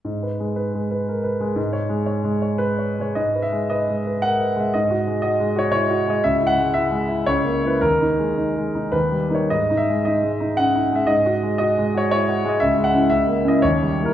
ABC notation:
X:1
M:3/4
L:1/16
Q:1/4=116
K:G#m
V:1 name="Grand piano"
z12 | z8 B3 c | d2 e2 d4 f3 e | d4 d3 c c3 d |
e2 f2 e4 c3 B | A8 B3 c | d2 e2 d4 f3 e | d4 d3 c c3 d |
e2 f2 e3 d c3 A |]
V:2 name="Grand piano"
(3G,,2 B2 G,2 (3B2 G,2 B2 (3A2 B2 G,2 | (3G,,2 c2 G,2 (3c2 G,2 c2- (3c2 c2 G,2 | (3G,,2 B2 G,2 (3B2 G,2 B2 (3A2 B2 G,2 | (3G,,2 F2 G,2 (3F2 G,2 F2 (3E2 F2 G,2 |
(3C,,2 E2 G,2 (3E2 G,2 E2 (3C,,2 A,2 [A,E]2 | (3D,,2 D2 G,2 (3D2 G,2 D2 (3D,,2 =G,2 [A,D]2 | (3G,,2 D2 G,2 (3D2 G,2 D2 (3C2 D2 G,2 | (3G,,2 F2 G,2 (3F2 G,2 F2 (3E2 F2 G,2 |
(3C,,2 G,2 [CE]2 (3C,,2 A,2 [CE]2 (3D,,2 =G,2 [A,E]2 |]